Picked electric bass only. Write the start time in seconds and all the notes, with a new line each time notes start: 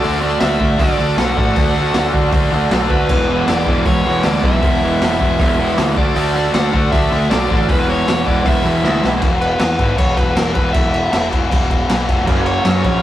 0.04 D2
0.41 D2
0.61 D2
0.80 D2
0.99 D2
1.17 B1
1.37 A1
1.57 D2
1.94 D2
2.14 D2
2.33 D2
2.52 D2
2.71 B1
2.90 D2
3.10 E1
3.47 E1
3.67 E1
3.86 E1
4.05 E1
4.25 D2
4.43 B1
4.63 E1
5.00 E1
5.21 E1
5.40 E1
5.59 E1
5.77 D2
5.97 D2
6.16 D2
6.54 D2
6.74 D2
6.93 D2
7.12 D2
7.32 B1
7.51 A1
7.69 E1
8.08 E1
8.26 E1
8.46 E1
8.65 E1
8.84 D2
9.03 B1
9.22 E1
9.60 E2
9.79 G#1
9.99 E1
10.17 E1
10.37 E1
10.56 E1
10.75 E1
11.14 E1
11.52 E1
11.90 B1
12.09 F1
12.27 F#1
12.66 F#2
12.84 A#1